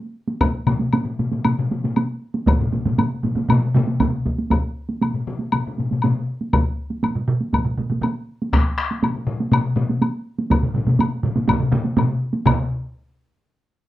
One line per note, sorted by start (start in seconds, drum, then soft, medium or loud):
0.28 taiko high medium
0.41 taiko loud
0.41 taiko high medium
0.41 high woodblock medium
0.67 taiko low-mid medium
0.67 taiko high soft
0.67 high woodblock soft
0.79 taiko high medium
0.93 taiko low-mid medium
0.93 taiko high medium
0.93 high woodblock soft
1.06 taiko low-mid medium
1.19 taiko low-mid medium
1.19 taiko high medium
1.32 taiko low-mid medium
1.32 taiko high medium
1.45 taiko low-mid medium
1.45 taiko high medium
1.45 high woodblock medium
1.59 taiko low-mid medium
1.71 taiko low-mid medium
1.71 taiko high medium
1.84 taiko low-mid medium
1.84 taiko high medium
1.96 taiko high medium
1.96 high woodblock soft
2.34 taiko high medium
2.46 taiko loud
2.46 taiko low-mid medium
2.46 taiko mid medium
2.46 taiko high medium
2.46 high woodblock soft
2.59 taiko low-mid medium
2.59 taiko mid medium
2.72 taiko low-mid medium
2.72 taiko mid medium
2.72 taiko high medium
2.85 taiko low-mid medium
2.85 taiko mid medium
2.85 taiko high medium
2.98 taiko low-mid medium
2.98 taiko mid medium
2.98 taiko high medium
2.98 high woodblock soft
3.23 taiko low-mid medium
3.23 taiko mid medium
3.23 taiko high medium
3.36 taiko low-mid medium
3.36 taiko mid medium
3.36 taiko high medium
3.49 taiko low-mid medium
3.49 taiko mid medium
3.49 taiko high medium
3.49 high woodblock medium
3.74 taiko low-mid loud
3.74 taiko mid loud
3.74 taiko high medium
3.87 taiko high medium
4.00 taiko medium
4.00 taiko low-mid medium
4.00 taiko mid medium
4.00 taiko high medium
4.00 high woodblock soft
4.26 taiko medium
4.26 taiko high medium
4.38 taiko high medium
4.50 taiko medium
4.50 taiko high medium
4.50 high woodblock soft
4.89 taiko high soft
5.01 taiko low-mid medium
5.01 taiko high medium
5.01 high woodblock soft
5.14 taiko low-mid medium
5.27 taiko low-mid medium
5.39 taiko high soft
5.52 taiko low-mid medium
5.52 taiko high medium
5.52 high woodblock soft
5.67 taiko low-mid medium
5.78 taiko low-mid medium
5.78 taiko high soft
5.91 taiko low-mid medium
5.91 taiko high soft
6.02 taiko low-mid medium
6.02 taiko high medium
6.02 high woodblock soft
6.41 taiko high soft
6.53 taiko loud
6.53 taiko high medium
6.53 high woodblock medium
6.90 taiko high soft
7.03 taiko mid medium
7.03 taiko high medium
7.03 high woodblock soft
7.15 taiko mid medium
7.28 taiko mid medium
7.41 taiko high soft
7.53 taiko medium
7.53 taiko mid medium
7.53 taiko high medium
7.53 high woodblock soft
7.65 taiko mid medium
7.78 taiko mid medium
7.78 taiko high soft
7.90 taiko mid medium
7.90 taiko high soft
8.02 taiko mid medium
8.02 taiko high medium
8.02 high woodblock soft
8.42 taiko high medium
8.53 taiko rim medium
8.53 taiko medium
8.53 taiko high medium
8.53 high woodblock soft
8.78 taiko rim medium
8.91 taiko high soft
9.03 taiko low-mid medium
9.03 taiko high medium
9.03 high woodblock soft
9.14 taiko low-mid medium
9.27 taiko low-mid medium
9.40 taiko high medium
9.52 taiko low-mid loud
9.52 taiko high medium
9.52 high woodblock medium
9.76 taiko low-mid loud
9.76 taiko high soft
9.89 taiko high medium
10.02 taiko high medium
10.02 high woodblock soft
10.38 taiko high medium
10.50 taiko medium
10.50 taiko low-mid medium
10.50 taiko mid medium
10.50 taiko high medium
10.50 high woodblock medium
10.63 taiko low-mid medium
10.63 taiko mid medium
10.75 taiko low-mid medium
10.75 taiko mid medium
10.87 taiko low-mid medium
10.87 taiko mid medium
10.87 taiko high medium
10.99 taiko low-mid medium
10.99 taiko mid medium
10.99 taiko high medium
10.99 high woodblock soft
11.23 taiko low-mid medium
11.23 taiko mid medium
11.36 taiko low-mid medium
11.36 taiko mid medium
11.36 taiko high medium
11.48 taiko medium
11.48 taiko low-mid loud
11.48 taiko mid medium
11.48 taiko high medium
11.48 high woodblock medium
11.60 taiko low-mid medium
11.60 taiko mid medium
11.72 taiko low-mid loud
11.72 taiko mid loud
11.72 taiko high medium
11.85 taiko high medium
11.97 taiko low-mid loud
11.97 taiko mid loud
11.97 taiko high medium
11.97 high woodblock soft
12.33 taiko high medium
12.46 taiko medium
12.46 taiko low-mid loud
12.46 taiko mid loud
12.46 taiko high medium
12.46 high woodblock medium